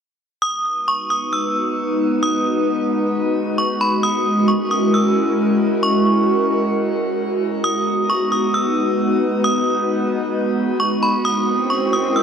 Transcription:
0, 0, Header, 1, 4, 480
1, 0, Start_track
1, 0, Key_signature, 5, "minor"
1, 0, Tempo, 451128
1, 449, Time_signature, 4, 2, 24, 8
1, 13012, End_track
2, 0, Start_track
2, 0, Title_t, "Synth bell"
2, 0, Program_c, 0, 98
2, 450, Note_on_c, 0, 87, 105
2, 901, Note_off_c, 0, 87, 0
2, 936, Note_on_c, 0, 85, 78
2, 1161, Note_off_c, 0, 85, 0
2, 1172, Note_on_c, 0, 87, 78
2, 1399, Note_off_c, 0, 87, 0
2, 1410, Note_on_c, 0, 88, 76
2, 1861, Note_off_c, 0, 88, 0
2, 2369, Note_on_c, 0, 87, 95
2, 2820, Note_off_c, 0, 87, 0
2, 3810, Note_on_c, 0, 85, 81
2, 4038, Note_off_c, 0, 85, 0
2, 4053, Note_on_c, 0, 83, 88
2, 4279, Note_off_c, 0, 83, 0
2, 4291, Note_on_c, 0, 87, 100
2, 4742, Note_off_c, 0, 87, 0
2, 4767, Note_on_c, 0, 85, 72
2, 4996, Note_off_c, 0, 85, 0
2, 5012, Note_on_c, 0, 87, 76
2, 5239, Note_off_c, 0, 87, 0
2, 5256, Note_on_c, 0, 88, 77
2, 5704, Note_off_c, 0, 88, 0
2, 6203, Note_on_c, 0, 85, 97
2, 6657, Note_off_c, 0, 85, 0
2, 8129, Note_on_c, 0, 87, 106
2, 8580, Note_off_c, 0, 87, 0
2, 8614, Note_on_c, 0, 85, 79
2, 8840, Note_off_c, 0, 85, 0
2, 8851, Note_on_c, 0, 87, 77
2, 9078, Note_off_c, 0, 87, 0
2, 9089, Note_on_c, 0, 88, 74
2, 9540, Note_off_c, 0, 88, 0
2, 10049, Note_on_c, 0, 87, 99
2, 10500, Note_off_c, 0, 87, 0
2, 11491, Note_on_c, 0, 85, 81
2, 11718, Note_off_c, 0, 85, 0
2, 11734, Note_on_c, 0, 83, 88
2, 11960, Note_off_c, 0, 83, 0
2, 11971, Note_on_c, 0, 87, 101
2, 12421, Note_off_c, 0, 87, 0
2, 12447, Note_on_c, 0, 85, 75
2, 12676, Note_off_c, 0, 85, 0
2, 12693, Note_on_c, 0, 87, 77
2, 12920, Note_off_c, 0, 87, 0
2, 12938, Note_on_c, 0, 88, 78
2, 13012, Note_off_c, 0, 88, 0
2, 13012, End_track
3, 0, Start_track
3, 0, Title_t, "Ambient pad"
3, 0, Program_c, 1, 92
3, 450, Note_on_c, 1, 56, 80
3, 450, Note_on_c, 1, 59, 69
3, 450, Note_on_c, 1, 63, 77
3, 450, Note_on_c, 1, 71, 91
3, 451, Note_on_c, 1, 66, 70
3, 4251, Note_off_c, 1, 63, 0
3, 4251, Note_off_c, 1, 71, 0
3, 4252, Note_off_c, 1, 59, 0
3, 4290, Note_on_c, 1, 61, 76
3, 4290, Note_on_c, 1, 64, 75
3, 4290, Note_on_c, 1, 70, 89
3, 8091, Note_off_c, 1, 61, 0
3, 8091, Note_off_c, 1, 64, 0
3, 8091, Note_off_c, 1, 70, 0
3, 8129, Note_on_c, 1, 63, 74
3, 8129, Note_on_c, 1, 71, 90
3, 8130, Note_on_c, 1, 59, 73
3, 11927, Note_off_c, 1, 56, 0
3, 11928, Note_off_c, 1, 66, 0
3, 11931, Note_off_c, 1, 59, 0
3, 11931, Note_off_c, 1, 63, 0
3, 11931, Note_off_c, 1, 71, 0
3, 11969, Note_on_c, 1, 56, 81
3, 11969, Note_on_c, 1, 61, 78
3, 11969, Note_on_c, 1, 64, 76
3, 11969, Note_on_c, 1, 66, 72
3, 11969, Note_on_c, 1, 70, 87
3, 13012, Note_off_c, 1, 56, 0
3, 13012, Note_off_c, 1, 61, 0
3, 13012, Note_off_c, 1, 64, 0
3, 13012, Note_off_c, 1, 66, 0
3, 13012, Note_off_c, 1, 70, 0
3, 13012, End_track
4, 0, Start_track
4, 0, Title_t, "Swell"
4, 0, Program_c, 2, 103
4, 11969, Note_on_c, 2, 60, 83
4, 13012, Note_off_c, 2, 60, 0
4, 13012, End_track
0, 0, End_of_file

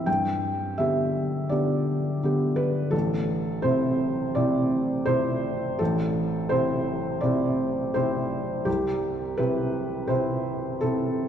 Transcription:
0, 0, Header, 1, 2, 480
1, 0, Start_track
1, 0, Key_signature, 0, "minor"
1, 0, Tempo, 714286
1, 46, Time_signature, 4, 2, 24, 8
1, 3407, Tempo, 721154
1, 7542, End_track
2, 0, Start_track
2, 0, Title_t, "Felt piano"
2, 0, Program_c, 0, 0
2, 0, Control_c, 0, 64, 127
2, 42, Note_on_c, 0, 79, 61
2, 47, Note_on_c, 0, 43, 39
2, 60, Control_c, 0, 64, 0
2, 156, Control_c, 0, 64, 127
2, 514, Note_off_c, 0, 43, 0
2, 522, Note_on_c, 0, 76, 62
2, 526, Note_off_c, 0, 79, 0
2, 532, Note_on_c, 0, 50, 33
2, 533, Note_on_c, 0, 59, 34
2, 537, Note_on_c, 0, 67, 35
2, 989, Note_off_c, 0, 50, 0
2, 989, Note_off_c, 0, 59, 0
2, 991, Note_off_c, 0, 67, 0
2, 1004, Note_on_c, 0, 74, 52
2, 1011, Note_off_c, 0, 76, 0
2, 1014, Note_on_c, 0, 50, 33
2, 1019, Note_on_c, 0, 59, 34
2, 1019, Note_on_c, 0, 67, 35
2, 1469, Note_off_c, 0, 50, 0
2, 1472, Note_off_c, 0, 59, 0
2, 1472, Note_off_c, 0, 67, 0
2, 1502, Note_on_c, 0, 50, 35
2, 1502, Note_on_c, 0, 59, 33
2, 1512, Note_on_c, 0, 67, 37
2, 1721, Note_on_c, 0, 71, 64
2, 1728, Note_off_c, 0, 74, 0
2, 1947, Note_off_c, 0, 50, 0
2, 1947, Note_off_c, 0, 59, 0
2, 1952, Note_off_c, 0, 67, 0
2, 1953, Note_on_c, 0, 69, 58
2, 1962, Note_on_c, 0, 33, 45
2, 1965, Note_off_c, 0, 71, 0
2, 1983, Control_c, 0, 64, 0
2, 2093, Control_c, 0, 64, 127
2, 2429, Note_off_c, 0, 33, 0
2, 2434, Note_on_c, 0, 72, 62
2, 2439, Note_off_c, 0, 69, 0
2, 2444, Note_on_c, 0, 48, 36
2, 2448, Note_on_c, 0, 60, 35
2, 2449, Note_on_c, 0, 64, 37
2, 2897, Note_off_c, 0, 48, 0
2, 2900, Note_off_c, 0, 60, 0
2, 2900, Note_off_c, 0, 64, 0
2, 2920, Note_off_c, 0, 72, 0
2, 2922, Note_on_c, 0, 74, 63
2, 2930, Note_on_c, 0, 48, 37
2, 2933, Note_on_c, 0, 64, 38
2, 2934, Note_on_c, 0, 60, 34
2, 3382, Note_off_c, 0, 48, 0
2, 3383, Note_off_c, 0, 64, 0
2, 3384, Note_off_c, 0, 60, 0
2, 3397, Note_on_c, 0, 72, 64
2, 3404, Note_on_c, 0, 48, 39
2, 3405, Note_off_c, 0, 74, 0
2, 3410, Note_on_c, 0, 60, 37
2, 3418, Note_on_c, 0, 64, 40
2, 3863, Note_off_c, 0, 48, 0
2, 3866, Note_off_c, 0, 60, 0
2, 3869, Note_off_c, 0, 64, 0
2, 3884, Note_on_c, 0, 69, 64
2, 3886, Note_off_c, 0, 72, 0
2, 3897, Note_on_c, 0, 33, 46
2, 3903, Control_c, 0, 64, 0
2, 4001, Control_c, 0, 64, 127
2, 4354, Note_on_c, 0, 72, 64
2, 4356, Note_off_c, 0, 33, 0
2, 4364, Note_off_c, 0, 69, 0
2, 4367, Note_on_c, 0, 48, 36
2, 4370, Note_on_c, 0, 60, 38
2, 4370, Note_on_c, 0, 64, 39
2, 4817, Note_off_c, 0, 48, 0
2, 4819, Note_off_c, 0, 60, 0
2, 4819, Note_off_c, 0, 64, 0
2, 4829, Note_on_c, 0, 74, 63
2, 4837, Note_off_c, 0, 72, 0
2, 4844, Note_on_c, 0, 48, 34
2, 4845, Note_on_c, 0, 60, 35
2, 4847, Note_on_c, 0, 64, 41
2, 5302, Note_off_c, 0, 48, 0
2, 5303, Note_off_c, 0, 60, 0
2, 5303, Note_off_c, 0, 64, 0
2, 5318, Note_on_c, 0, 72, 64
2, 5321, Note_off_c, 0, 74, 0
2, 5327, Note_on_c, 0, 48, 36
2, 5328, Note_on_c, 0, 60, 37
2, 5331, Note_on_c, 0, 64, 41
2, 5775, Note_off_c, 0, 48, 0
2, 5775, Note_off_c, 0, 60, 0
2, 5777, Note_off_c, 0, 64, 0
2, 5790, Note_on_c, 0, 67, 63
2, 5795, Note_on_c, 0, 36, 44
2, 5797, Note_off_c, 0, 72, 0
2, 5815, Control_c, 0, 64, 0
2, 5924, Control_c, 0, 64, 127
2, 6265, Note_off_c, 0, 36, 0
2, 6272, Note_on_c, 0, 71, 65
2, 6277, Note_off_c, 0, 67, 0
2, 6281, Note_on_c, 0, 48, 37
2, 6284, Note_on_c, 0, 60, 36
2, 6284, Note_on_c, 0, 64, 40
2, 6730, Note_off_c, 0, 48, 0
2, 6732, Note_off_c, 0, 60, 0
2, 6732, Note_off_c, 0, 64, 0
2, 6738, Note_on_c, 0, 72, 52
2, 6743, Note_on_c, 0, 48, 35
2, 6749, Note_on_c, 0, 60, 36
2, 6753, Note_off_c, 0, 71, 0
2, 6755, Note_on_c, 0, 64, 39
2, 7208, Note_off_c, 0, 48, 0
2, 7211, Note_off_c, 0, 60, 0
2, 7214, Note_off_c, 0, 64, 0
2, 7226, Note_on_c, 0, 69, 64
2, 7232, Note_off_c, 0, 72, 0
2, 7234, Note_on_c, 0, 48, 35
2, 7238, Note_on_c, 0, 64, 37
2, 7239, Note_on_c, 0, 60, 35
2, 7542, Note_off_c, 0, 48, 0
2, 7542, Note_off_c, 0, 60, 0
2, 7542, Note_off_c, 0, 64, 0
2, 7542, Note_off_c, 0, 69, 0
2, 7542, End_track
0, 0, End_of_file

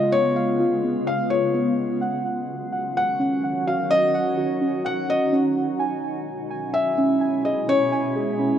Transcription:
0, 0, Header, 1, 4, 480
1, 0, Start_track
1, 0, Key_signature, -6, "minor"
1, 0, Tempo, 472441
1, 128, Time_signature, 4, 2, 24, 8
1, 8725, End_track
2, 0, Start_track
2, 0, Title_t, "Felt piano"
2, 0, Program_c, 0, 0
2, 0, Note_on_c, 0, 75, 84
2, 120, Note_off_c, 0, 75, 0
2, 125, Note_on_c, 0, 73, 97
2, 1046, Note_off_c, 0, 73, 0
2, 1089, Note_on_c, 0, 77, 77
2, 1316, Note_off_c, 0, 77, 0
2, 1323, Note_on_c, 0, 73, 82
2, 2004, Note_off_c, 0, 73, 0
2, 3018, Note_on_c, 0, 78, 81
2, 3692, Note_off_c, 0, 78, 0
2, 3734, Note_on_c, 0, 77, 74
2, 3959, Note_off_c, 0, 77, 0
2, 3968, Note_on_c, 0, 75, 107
2, 4887, Note_off_c, 0, 75, 0
2, 4935, Note_on_c, 0, 78, 92
2, 5160, Note_off_c, 0, 78, 0
2, 5179, Note_on_c, 0, 75, 92
2, 5402, Note_off_c, 0, 75, 0
2, 6844, Note_on_c, 0, 76, 82
2, 7525, Note_off_c, 0, 76, 0
2, 7568, Note_on_c, 0, 75, 70
2, 7796, Note_off_c, 0, 75, 0
2, 7812, Note_on_c, 0, 73, 99
2, 8725, Note_off_c, 0, 73, 0
2, 8725, End_track
3, 0, Start_track
3, 0, Title_t, "Synth keys"
3, 0, Program_c, 1, 88
3, 0, Note_on_c, 1, 59, 69
3, 0, Note_on_c, 1, 65, 69
3, 0, Note_on_c, 1, 77, 92
3, 119, Note_off_c, 1, 59, 0
3, 131, Note_on_c, 1, 59, 62
3, 355, Note_off_c, 1, 77, 0
3, 368, Note_on_c, 1, 77, 97
3, 593, Note_off_c, 1, 65, 0
3, 605, Note_on_c, 1, 65, 73
3, 840, Note_off_c, 1, 59, 0
3, 852, Note_on_c, 1, 59, 69
3, 1074, Note_off_c, 1, 77, 0
3, 1086, Note_on_c, 1, 77, 96
3, 1316, Note_off_c, 1, 65, 0
3, 1328, Note_on_c, 1, 65, 75
3, 1554, Note_off_c, 1, 59, 0
3, 1566, Note_on_c, 1, 59, 74
3, 2044, Note_on_c, 1, 78, 91
3, 2047, Note_off_c, 1, 59, 0
3, 2047, Note_off_c, 1, 77, 0
3, 2048, Note_off_c, 1, 65, 0
3, 2755, Note_off_c, 1, 78, 0
3, 2768, Note_on_c, 1, 78, 87
3, 3246, Note_on_c, 1, 61, 72
3, 3480, Note_off_c, 1, 78, 0
3, 3492, Note_on_c, 1, 78, 93
3, 3732, Note_on_c, 1, 66, 74
3, 3959, Note_off_c, 1, 61, 0
3, 3971, Note_on_c, 1, 61, 67
3, 4198, Note_off_c, 1, 78, 0
3, 4210, Note_on_c, 1, 78, 100
3, 4431, Note_off_c, 1, 66, 0
3, 4443, Note_on_c, 1, 66, 79
3, 4674, Note_off_c, 1, 61, 0
3, 4686, Note_on_c, 1, 61, 73
3, 4912, Note_off_c, 1, 78, 0
3, 4925, Note_on_c, 1, 78, 103
3, 5159, Note_off_c, 1, 66, 0
3, 5171, Note_on_c, 1, 66, 73
3, 5395, Note_off_c, 1, 61, 0
3, 5407, Note_on_c, 1, 61, 70
3, 5886, Note_off_c, 1, 78, 0
3, 5887, Note_off_c, 1, 61, 0
3, 5887, Note_on_c, 1, 80, 101
3, 5890, Note_off_c, 1, 66, 0
3, 6596, Note_off_c, 1, 80, 0
3, 6609, Note_on_c, 1, 80, 98
3, 7090, Note_on_c, 1, 61, 70
3, 7312, Note_off_c, 1, 80, 0
3, 7324, Note_on_c, 1, 80, 99
3, 7570, Note_on_c, 1, 68, 73
3, 7793, Note_off_c, 1, 61, 0
3, 7805, Note_on_c, 1, 61, 76
3, 8036, Note_off_c, 1, 80, 0
3, 8048, Note_on_c, 1, 80, 100
3, 8278, Note_off_c, 1, 68, 0
3, 8290, Note_on_c, 1, 68, 82
3, 8511, Note_off_c, 1, 61, 0
3, 8524, Note_on_c, 1, 61, 70
3, 8725, Note_off_c, 1, 61, 0
3, 8725, Note_off_c, 1, 68, 0
3, 8725, Note_off_c, 1, 80, 0
3, 8725, End_track
4, 0, Start_track
4, 0, Title_t, "Ambient pad"
4, 0, Program_c, 2, 92
4, 0, Note_on_c, 2, 49, 78
4, 0, Note_on_c, 2, 56, 70
4, 0, Note_on_c, 2, 59, 68
4, 0, Note_on_c, 2, 65, 84
4, 2007, Note_off_c, 2, 49, 0
4, 2010, Note_off_c, 2, 56, 0
4, 2010, Note_off_c, 2, 59, 0
4, 2010, Note_off_c, 2, 65, 0
4, 2046, Note_on_c, 2, 51, 81
4, 2046, Note_on_c, 2, 54, 67
4, 2046, Note_on_c, 2, 61, 72
4, 2047, Note_on_c, 2, 66, 84
4, 3948, Note_off_c, 2, 61, 0
4, 3970, Note_on_c, 2, 63, 70
4, 5848, Note_off_c, 2, 51, 0
4, 5849, Note_off_c, 2, 54, 0
4, 5849, Note_off_c, 2, 66, 0
4, 5870, Note_off_c, 2, 63, 0
4, 5888, Note_on_c, 2, 47, 77
4, 5888, Note_on_c, 2, 56, 71
4, 5888, Note_on_c, 2, 61, 70
4, 5888, Note_on_c, 2, 64, 89
4, 7789, Note_off_c, 2, 61, 0
4, 7807, Note_on_c, 2, 59, 70
4, 8725, Note_off_c, 2, 47, 0
4, 8725, Note_off_c, 2, 56, 0
4, 8725, Note_off_c, 2, 59, 0
4, 8725, Note_off_c, 2, 64, 0
4, 8725, End_track
0, 0, End_of_file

